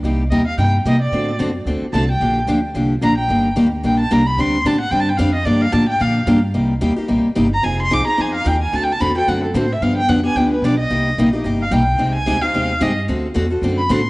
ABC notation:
X:1
M:4/4
L:1/8
Q:"Swing" 1/4=221
K:Gm
V:1 name="Violin"
z2 e f g z e d- | d2 z4 a g- | g2 z4 b g- | g2 z2 g a b =b |
c'2 a ^f (3g a g =f e | d f a g f2 z2 | [K:Cm] z6 z b | a c' d' b a f g a |
(3=a g a =b g ^f =A c =e | f g ^f a g =B d e- | e4 z f g2- | g a2 f3 e z |
z4 z =b c'2 |]
V:2 name="Steel-string acoustic guitar"
[C,G,B,EG] z [C,G,B,EG] z [C,G,B,EG] z [C,G,B,EG] z | [D,A,C^FA] z [D,A,CFA] z [D,A,CFA] z [D,A,CFA] z | [D,F,B,DG] z [D,F,B,DG] z [D,F,B,DG] z [D,F,B,DG] z | [E,G,B,DG] z [E,G,B,DG] z [E,G,B,DG] z [E,G,B,DG] z |
[D,G,CDG] z [D,G,CDG] z [D,G,CDG] z [D,G,CDG] z | [D,F,B,DG] z [D,F,B,DG] z [D,F,B,DG] z [D,F,B,DG] z | [K:Cm] [C,G,B,EG] z [C,G,B,EG] [B,EG] [C,G,B,EG] z [C,G,B,EG] z | [F,CEA] z [F,CEA] [CEA] [F,CEA] z [F,CEA] z |
[D,=A,C^F=A] z [D,A,CFA] [CFA] [D,A,CFA] z [D,A,CFA] z | [D,F,=B,DG] z [D,F,B,DG] [B,DG] [D,F,B,DG] z [D,F,B,DG] z | [C,G,B,EG] z [C,G,B,EG] [B,EG] [C,G,B,EG] z [C,G,B,EG] z | [C,A,CEG] z [C,A,CEG] [CEG] [C,A,CEG] z [C,A,CEG] z |
[D,=A,C^F=A] z [D,A,CFA] [CFA] [D,A,CFA] z [D,A,CFA] z |]
V:3 name="Upright bass" clef=bass
C,,2 E,,2 G,,2 C,2 | A,,2 ^F,,2 D,, z C,,2 | B,,,2 D,,2 C,,2 B,,,2 | G,,,2 D,,2 B,,,2 C,,2 |
D,,2 A,,2 G,,2 F,,2 | G,,2 A,,2 B,,2 G,,2 | [K:Cm] C,,2 E,, z B,,, z G,,,2 | F,,,2 C,, z F,,2 E,,2 |
D,,2 =E,,2 ^F,,2 =A,,2 | G,,2 F,,2 D,,2 =B,,,2 | C,,2 B,,,2 G,,,2 =B,,,2 | C,,2 D,,2 E,,2 G,,2 |
D,,2 =E,,2 ^F,,2 =A,,2 |]